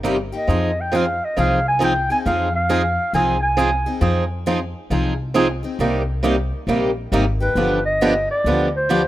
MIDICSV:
0, 0, Header, 1, 4, 480
1, 0, Start_track
1, 0, Tempo, 442478
1, 532, Time_signature, 4, 2, 24, 8
1, 9847, End_track
2, 0, Start_track
2, 0, Title_t, "Clarinet"
2, 0, Program_c, 0, 71
2, 393, Note_on_c, 0, 75, 73
2, 875, Note_on_c, 0, 79, 82
2, 891, Note_off_c, 0, 75, 0
2, 1042, Note_on_c, 0, 77, 84
2, 1058, Note_off_c, 0, 79, 0
2, 1348, Note_on_c, 0, 75, 72
2, 1364, Note_off_c, 0, 77, 0
2, 1504, Note_off_c, 0, 75, 0
2, 1511, Note_on_c, 0, 77, 83
2, 1781, Note_off_c, 0, 77, 0
2, 1821, Note_on_c, 0, 80, 92
2, 1974, Note_off_c, 0, 80, 0
2, 2001, Note_on_c, 0, 79, 86
2, 2266, Note_off_c, 0, 79, 0
2, 2295, Note_on_c, 0, 80, 81
2, 2370, Note_off_c, 0, 80, 0
2, 2454, Note_on_c, 0, 77, 85
2, 2732, Note_off_c, 0, 77, 0
2, 2769, Note_on_c, 0, 77, 90
2, 3375, Note_off_c, 0, 77, 0
2, 3408, Note_on_c, 0, 80, 86
2, 3689, Note_off_c, 0, 80, 0
2, 3708, Note_on_c, 0, 80, 90
2, 4325, Note_off_c, 0, 80, 0
2, 8046, Note_on_c, 0, 71, 72
2, 8485, Note_off_c, 0, 71, 0
2, 8520, Note_on_c, 0, 75, 84
2, 8962, Note_off_c, 0, 75, 0
2, 9011, Note_on_c, 0, 74, 82
2, 9448, Note_off_c, 0, 74, 0
2, 9506, Note_on_c, 0, 72, 87
2, 9847, Note_off_c, 0, 72, 0
2, 9847, End_track
3, 0, Start_track
3, 0, Title_t, "Steel-string acoustic guitar"
3, 0, Program_c, 1, 25
3, 50, Note_on_c, 1, 48, 75
3, 53, Note_on_c, 1, 55, 67
3, 58, Note_on_c, 1, 58, 80
3, 60, Note_on_c, 1, 63, 77
3, 61, Note_on_c, 1, 67, 84
3, 173, Note_off_c, 1, 48, 0
3, 175, Note_off_c, 1, 55, 0
3, 177, Note_off_c, 1, 58, 0
3, 178, Note_off_c, 1, 63, 0
3, 179, Note_off_c, 1, 67, 0
3, 351, Note_on_c, 1, 67, 58
3, 362, Note_on_c, 1, 63, 50
3, 373, Note_on_c, 1, 58, 40
3, 524, Note_off_c, 1, 67, 0
3, 529, Note_off_c, 1, 63, 0
3, 534, Note_off_c, 1, 58, 0
3, 537, Note_on_c, 1, 53, 55
3, 539, Note_on_c, 1, 60, 54
3, 547, Note_on_c, 1, 68, 68
3, 548, Note_on_c, 1, 63, 61
3, 766, Note_off_c, 1, 53, 0
3, 767, Note_off_c, 1, 60, 0
3, 771, Note_off_c, 1, 63, 0
3, 771, Note_off_c, 1, 68, 0
3, 1012, Note_on_c, 1, 53, 71
3, 1027, Note_on_c, 1, 63, 72
3, 1028, Note_on_c, 1, 60, 75
3, 1029, Note_on_c, 1, 68, 78
3, 1134, Note_off_c, 1, 53, 0
3, 1141, Note_off_c, 1, 63, 0
3, 1142, Note_off_c, 1, 60, 0
3, 1143, Note_off_c, 1, 68, 0
3, 1491, Note_on_c, 1, 60, 58
3, 1492, Note_on_c, 1, 53, 59
3, 1498, Note_on_c, 1, 63, 67
3, 1505, Note_on_c, 1, 68, 72
3, 1723, Note_off_c, 1, 53, 0
3, 1723, Note_off_c, 1, 60, 0
3, 1726, Note_off_c, 1, 63, 0
3, 1729, Note_off_c, 1, 68, 0
3, 1968, Note_on_c, 1, 53, 75
3, 1974, Note_on_c, 1, 60, 72
3, 1975, Note_on_c, 1, 63, 81
3, 1978, Note_on_c, 1, 68, 75
3, 2092, Note_off_c, 1, 53, 0
3, 2095, Note_off_c, 1, 60, 0
3, 2095, Note_off_c, 1, 63, 0
3, 2097, Note_off_c, 1, 68, 0
3, 2279, Note_on_c, 1, 68, 50
3, 2288, Note_on_c, 1, 63, 49
3, 2296, Note_on_c, 1, 60, 46
3, 2443, Note_off_c, 1, 60, 0
3, 2447, Note_off_c, 1, 68, 0
3, 2451, Note_off_c, 1, 63, 0
3, 2453, Note_on_c, 1, 53, 59
3, 2456, Note_on_c, 1, 60, 59
3, 2466, Note_on_c, 1, 68, 61
3, 2468, Note_on_c, 1, 63, 64
3, 2683, Note_off_c, 1, 53, 0
3, 2685, Note_off_c, 1, 60, 0
3, 2690, Note_off_c, 1, 68, 0
3, 2691, Note_off_c, 1, 63, 0
3, 2922, Note_on_c, 1, 53, 78
3, 2925, Note_on_c, 1, 60, 71
3, 2932, Note_on_c, 1, 63, 78
3, 2932, Note_on_c, 1, 68, 85
3, 3049, Note_off_c, 1, 53, 0
3, 3050, Note_off_c, 1, 60, 0
3, 3054, Note_off_c, 1, 63, 0
3, 3054, Note_off_c, 1, 68, 0
3, 3402, Note_on_c, 1, 53, 63
3, 3405, Note_on_c, 1, 60, 62
3, 3410, Note_on_c, 1, 63, 64
3, 3417, Note_on_c, 1, 68, 69
3, 3638, Note_off_c, 1, 53, 0
3, 3639, Note_off_c, 1, 60, 0
3, 3642, Note_off_c, 1, 63, 0
3, 3645, Note_off_c, 1, 68, 0
3, 3888, Note_on_c, 1, 60, 74
3, 3889, Note_on_c, 1, 53, 68
3, 3897, Note_on_c, 1, 63, 80
3, 3907, Note_on_c, 1, 68, 78
3, 4012, Note_off_c, 1, 53, 0
3, 4012, Note_off_c, 1, 60, 0
3, 4016, Note_off_c, 1, 63, 0
3, 4021, Note_off_c, 1, 68, 0
3, 4188, Note_on_c, 1, 68, 56
3, 4196, Note_on_c, 1, 63, 49
3, 4205, Note_on_c, 1, 60, 45
3, 4341, Note_off_c, 1, 60, 0
3, 4346, Note_off_c, 1, 63, 0
3, 4348, Note_off_c, 1, 68, 0
3, 4350, Note_on_c, 1, 53, 58
3, 4354, Note_on_c, 1, 60, 62
3, 4359, Note_on_c, 1, 63, 65
3, 4361, Note_on_c, 1, 68, 59
3, 4592, Note_off_c, 1, 53, 0
3, 4594, Note_off_c, 1, 60, 0
3, 4596, Note_off_c, 1, 63, 0
3, 4597, Note_off_c, 1, 68, 0
3, 4840, Note_on_c, 1, 53, 70
3, 4846, Note_on_c, 1, 63, 77
3, 4848, Note_on_c, 1, 60, 72
3, 4849, Note_on_c, 1, 68, 78
3, 4967, Note_off_c, 1, 53, 0
3, 4971, Note_off_c, 1, 63, 0
3, 4972, Note_off_c, 1, 60, 0
3, 4972, Note_off_c, 1, 68, 0
3, 5326, Note_on_c, 1, 53, 61
3, 5327, Note_on_c, 1, 60, 61
3, 5334, Note_on_c, 1, 63, 63
3, 5343, Note_on_c, 1, 68, 61
3, 5560, Note_off_c, 1, 53, 0
3, 5560, Note_off_c, 1, 60, 0
3, 5564, Note_off_c, 1, 63, 0
3, 5568, Note_off_c, 1, 68, 0
3, 5799, Note_on_c, 1, 60, 76
3, 5805, Note_on_c, 1, 53, 77
3, 5810, Note_on_c, 1, 68, 78
3, 5811, Note_on_c, 1, 63, 80
3, 5927, Note_off_c, 1, 60, 0
3, 5930, Note_off_c, 1, 53, 0
3, 5933, Note_off_c, 1, 63, 0
3, 5933, Note_off_c, 1, 68, 0
3, 6107, Note_on_c, 1, 68, 49
3, 6119, Note_on_c, 1, 63, 46
3, 6126, Note_on_c, 1, 60, 44
3, 6281, Note_off_c, 1, 68, 0
3, 6286, Note_off_c, 1, 60, 0
3, 6287, Note_off_c, 1, 63, 0
3, 6288, Note_on_c, 1, 48, 55
3, 6291, Note_on_c, 1, 58, 56
3, 6293, Note_on_c, 1, 55, 59
3, 6300, Note_on_c, 1, 67, 66
3, 6302, Note_on_c, 1, 63, 67
3, 6521, Note_off_c, 1, 48, 0
3, 6522, Note_off_c, 1, 58, 0
3, 6523, Note_off_c, 1, 55, 0
3, 6527, Note_off_c, 1, 67, 0
3, 6528, Note_off_c, 1, 63, 0
3, 6769, Note_on_c, 1, 48, 75
3, 6770, Note_on_c, 1, 55, 72
3, 6776, Note_on_c, 1, 58, 75
3, 6777, Note_on_c, 1, 63, 76
3, 6784, Note_on_c, 1, 67, 78
3, 6892, Note_off_c, 1, 48, 0
3, 6893, Note_off_c, 1, 55, 0
3, 6896, Note_off_c, 1, 58, 0
3, 6896, Note_off_c, 1, 63, 0
3, 6900, Note_off_c, 1, 67, 0
3, 7252, Note_on_c, 1, 48, 60
3, 7257, Note_on_c, 1, 55, 65
3, 7259, Note_on_c, 1, 58, 63
3, 7260, Note_on_c, 1, 63, 64
3, 7263, Note_on_c, 1, 67, 60
3, 7483, Note_off_c, 1, 48, 0
3, 7485, Note_off_c, 1, 55, 0
3, 7487, Note_off_c, 1, 58, 0
3, 7487, Note_off_c, 1, 63, 0
3, 7488, Note_off_c, 1, 67, 0
3, 7726, Note_on_c, 1, 48, 69
3, 7736, Note_on_c, 1, 55, 74
3, 7740, Note_on_c, 1, 58, 80
3, 7741, Note_on_c, 1, 63, 81
3, 7742, Note_on_c, 1, 67, 85
3, 7851, Note_off_c, 1, 48, 0
3, 7856, Note_off_c, 1, 55, 0
3, 7858, Note_off_c, 1, 58, 0
3, 7858, Note_off_c, 1, 63, 0
3, 7859, Note_off_c, 1, 67, 0
3, 8032, Note_on_c, 1, 67, 53
3, 8043, Note_on_c, 1, 63, 47
3, 8052, Note_on_c, 1, 58, 42
3, 8199, Note_on_c, 1, 50, 60
3, 8203, Note_off_c, 1, 67, 0
3, 8205, Note_on_c, 1, 53, 54
3, 8207, Note_off_c, 1, 58, 0
3, 8207, Note_off_c, 1, 63, 0
3, 8212, Note_on_c, 1, 59, 69
3, 8212, Note_on_c, 1, 62, 57
3, 8215, Note_on_c, 1, 67, 62
3, 8436, Note_off_c, 1, 50, 0
3, 8439, Note_off_c, 1, 53, 0
3, 8443, Note_off_c, 1, 59, 0
3, 8443, Note_off_c, 1, 62, 0
3, 8445, Note_off_c, 1, 67, 0
3, 8691, Note_on_c, 1, 50, 63
3, 8692, Note_on_c, 1, 53, 71
3, 8698, Note_on_c, 1, 59, 68
3, 8705, Note_on_c, 1, 62, 88
3, 8707, Note_on_c, 1, 67, 78
3, 8813, Note_off_c, 1, 50, 0
3, 8814, Note_off_c, 1, 53, 0
3, 8817, Note_off_c, 1, 59, 0
3, 8820, Note_off_c, 1, 62, 0
3, 8822, Note_off_c, 1, 67, 0
3, 9178, Note_on_c, 1, 53, 64
3, 9183, Note_on_c, 1, 50, 62
3, 9189, Note_on_c, 1, 59, 68
3, 9190, Note_on_c, 1, 62, 70
3, 9191, Note_on_c, 1, 67, 70
3, 9406, Note_off_c, 1, 53, 0
3, 9409, Note_off_c, 1, 50, 0
3, 9412, Note_off_c, 1, 59, 0
3, 9412, Note_off_c, 1, 62, 0
3, 9412, Note_off_c, 1, 67, 0
3, 9657, Note_on_c, 1, 50, 74
3, 9657, Note_on_c, 1, 53, 76
3, 9664, Note_on_c, 1, 59, 75
3, 9664, Note_on_c, 1, 62, 76
3, 9665, Note_on_c, 1, 67, 80
3, 9776, Note_off_c, 1, 50, 0
3, 9777, Note_off_c, 1, 53, 0
3, 9780, Note_off_c, 1, 59, 0
3, 9780, Note_off_c, 1, 62, 0
3, 9781, Note_off_c, 1, 67, 0
3, 9847, End_track
4, 0, Start_track
4, 0, Title_t, "Upright bass"
4, 0, Program_c, 2, 32
4, 0, Note_on_c, 2, 31, 68
4, 337, Note_off_c, 2, 31, 0
4, 521, Note_on_c, 2, 41, 73
4, 1292, Note_off_c, 2, 41, 0
4, 1488, Note_on_c, 2, 36, 71
4, 2257, Note_off_c, 2, 36, 0
4, 2449, Note_on_c, 2, 41, 80
4, 3217, Note_off_c, 2, 41, 0
4, 3399, Note_on_c, 2, 36, 72
4, 4171, Note_off_c, 2, 36, 0
4, 4351, Note_on_c, 2, 41, 83
4, 5127, Note_off_c, 2, 41, 0
4, 5317, Note_on_c, 2, 36, 72
4, 6090, Note_off_c, 2, 36, 0
4, 6280, Note_on_c, 2, 36, 76
4, 7052, Note_off_c, 2, 36, 0
4, 7234, Note_on_c, 2, 34, 71
4, 7649, Note_off_c, 2, 34, 0
4, 7721, Note_on_c, 2, 32, 73
4, 8133, Note_off_c, 2, 32, 0
4, 8194, Note_on_c, 2, 31, 76
4, 8969, Note_off_c, 2, 31, 0
4, 9160, Note_on_c, 2, 38, 71
4, 9847, Note_off_c, 2, 38, 0
4, 9847, End_track
0, 0, End_of_file